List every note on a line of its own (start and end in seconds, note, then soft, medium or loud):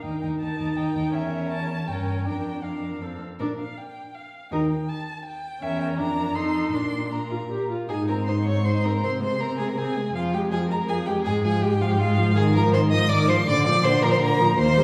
0.02 0.11 D#2 soft
0.02 0.21 D#4 soft
0.02 0.20 A#4 soft
0.02 0.21 G5 medium
0.21 0.30 D#2 soft
0.21 0.39 D#4 soft
0.21 0.39 A#4 soft
0.21 0.29 G5 medium
0.40 0.49 D#2 soft
0.40 0.58 D#4 soft
0.40 0.57 A#4 soft
0.40 0.78 A5 medium
0.58 0.67 D#2 soft
0.58 0.75 D#4 soft
0.58 0.75 A#4 soft
0.76 0.84 D#2 medium
0.76 0.94 D#4 soft
0.76 0.94 A#4 soft
0.76 1.15 G5 medium
0.95 1.03 D#2 medium
0.95 1.13 D#4 soft
0.95 1.13 A#4 soft
1.14 1.89 E2 medium
1.14 1.83 C#4 soft
1.14 1.83 A#4 medium
1.14 1.49 E5 medium
1.49 1.89 A5 medium
1.88 2.27 G2 soft
1.88 2.27 C#4 soft
1.88 2.25 A#4 soft
1.88 2.25 G5 medium
2.25 3.01 F2 soft
2.25 2.63 D4 soft
2.25 2.63 A#4 soft
2.25 2.64 G5 medium
2.63 3.03 D4 soft
2.63 3.03 A#4 soft
2.63 3.20 F5 soft
3.01 3.20 F2 soft
3.01 3.21 C4 soft
3.01 3.21 A4 soft
3.39 3.70 A#2 medium
3.39 3.58 D4 soft
3.39 3.57 A#4 soft
3.39 3.48 D5 medium
3.59 3.79 F5 medium
3.77 4.16 G5 medium
4.14 4.51 F5 medium
4.51 4.80 D#2 medium
4.51 4.68 D#4 soft
4.51 4.69 A#4 soft
4.51 4.70 G5 medium
4.71 4.90 G5 medium
4.88 5.24 A5 medium
5.25 5.64 G5 medium
5.61 5.99 E2 medium
5.61 5.99 C#4 medium
5.61 5.95 A#4 medium
5.61 5.80 E5 medium
5.80 5.88 G5 medium
5.97 6.35 F2 medium
5.97 6.36 D4 medium
5.97 6.34 A#4 medium
5.97 6.37 A#5 medium
6.35 6.72 F2 medium
6.35 6.76 D#4 medium
6.35 6.75 A4 medium
6.35 6.72 C6 medium
6.72 7.68 A#2 soft
6.72 7.11 D4 soft
6.72 7.10 A#4 soft
6.72 7.13 C6 medium
7.11 7.19 D4 soft
7.11 7.69 A#4 soft
7.11 7.70 A#5 medium
7.30 7.38 F4 soft
7.50 7.69 G4 medium
7.70 7.89 F4 soft
7.89 9.05 G#2 medium
7.89 8.10 D#4 soft
7.89 7.97 G#4 medium
7.89 8.07 G#5 medium
8.08 8.30 C4 soft
8.08 8.15 A#4 medium
8.08 8.26 A#5 medium
8.27 8.49 D#4 soft
8.27 8.35 C5 medium
8.27 8.45 C6 medium
8.45 8.66 C4 soft
8.45 8.65 C#5 medium
8.45 8.66 C#6 medium
8.65 8.86 D#4 soft
8.65 8.87 C5 medium
8.65 8.85 C6 medium
8.84 9.02 C4 medium
8.84 9.05 A#4 medium
8.84 9.03 A#5 medium
9.03 10.15 C3 medium
9.03 9.23 C4 soft
9.03 9.22 C5 medium
9.03 9.11 C6 medium
9.21 9.42 G#3 soft
9.21 9.42 C5 medium
9.21 9.41 C6 medium
9.40 9.61 C4 medium
9.40 9.59 A#4 medium
9.40 9.57 A#5 medium
9.58 9.77 G#3 medium
9.58 9.70 G#4 medium
9.58 9.69 G#5 medium
9.68 9.79 A#4 medium
9.68 9.79 A#5 medium
9.77 9.98 C4 medium
9.77 10.15 G#4 medium
9.77 10.15 G#5 medium
9.97 10.14 G#3 medium
10.14 11.27 F2 medium
10.14 10.35 F3 medium
10.14 10.35 F4 medium
10.14 10.23 F5 medium
10.34 10.54 G#3 medium
10.34 10.51 G4 medium
10.34 10.41 G5 medium
10.51 10.73 F3 medium
10.51 10.68 G#4 medium
10.51 10.59 G#5 medium
10.69 10.88 G#3 medium
10.69 10.90 A#4 medium
10.69 10.78 A#5 medium
10.88 11.09 F3 medium
10.88 11.07 G#4 medium
10.88 10.96 G#5 medium
11.06 11.26 G#3 medium
11.06 11.24 G4 medium
11.06 11.13 G5 medium
11.24 13.46 G#2 medium
11.24 11.46 G#3 medium
11.24 11.43 G#4 medium
11.24 11.33 G#5 medium
11.43 11.65 F3 medium
11.43 11.63 G#4 medium
11.43 11.62 G#5 medium
11.62 11.83 G#3 medium
11.62 11.82 G4 medium
11.62 11.83 G5 loud
11.81 12.00 F3 medium
11.81 11.89 F4 medium
11.81 11.93 F5 medium
11.89 12.00 G4 medium
11.89 12.01 G5 medium
11.98 12.19 G#3 medium
11.98 12.35 F4 medium
11.98 12.39 F5 loud
12.18 12.36 F3 medium
12.35 12.57 D#3 medium
12.35 12.43 G#4 loud
12.35 12.55 G#5 loud
12.54 12.76 F3 medium
12.54 12.72 A#4 medium
12.54 12.63 A#5 loud
12.73 12.94 D#3 medium
12.73 12.80 C5 medium
12.73 12.81 C6 loud
12.91 13.10 F3 medium
12.91 13.10 D#5 loud
12.91 13.12 D#6 loud
13.09 13.30 D#3 medium
13.09 13.28 D5 loud
13.09 13.31 D6 loud
13.28 13.47 F3 medium
13.28 13.36 C5 loud
13.28 13.49 C6 loud
13.47 14.56 A#2 medium
13.47 13.67 D3 medium
13.47 13.65 D5 loud
13.47 13.65 D6 loud
13.65 13.86 F3 medium
13.65 13.86 D5 loud
13.65 13.85 D6 loud
13.84 14.04 D3 medium
13.84 14.04 C5 loud
13.84 14.03 C6 loud
14.02 14.20 F3 medium
14.02 14.13 A#4 loud
14.02 14.11 A#5 loud
14.11 14.21 C5 loud
14.11 14.16 C6 loud
14.21 14.41 D3 medium
14.21 14.57 A#4 medium
14.21 14.57 A#5 loud
14.39 14.58 F3 medium
14.58 14.84 D#2 medium
14.58 14.79 A#3 medium
14.58 14.84 C5 loud
14.58 14.84 C6 loud
14.77 14.84 G3 medium